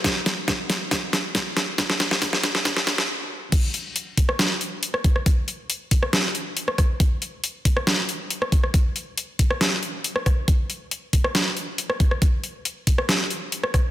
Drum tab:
CC |----------------|----------------|x---------------|----------------|
HH |x-x-x-o-x-x-x-x-|x-x-x-o-x-x-----|x-x-x-o-x-x-x-x-|x-x-x-o-x-x-x-x-|
SD |o-o-o-o-o-o-o-o-|oooooooooooo----|-------ro----r-r|-------ro----rr-|
BD |o---o---o---o---|o---o---o-------|o-----o-------o-|o-----o-------o-|

CC |----------------|----------------|----------------|----------------|
HH |x-x-x-o-x-x-x-x-|x-x-x-o-x-x-x-x-|x-x-x-o-x-x-x-x-|x-x-x-o-x-x-x-x-|
SD |-------ro----r-r|-------ro----rr-|-------ro----r-r|-------ro----rr-|
BD |o-----o-------o-|o-----o-------o-|o-----o-------o-|o-----o-------o-|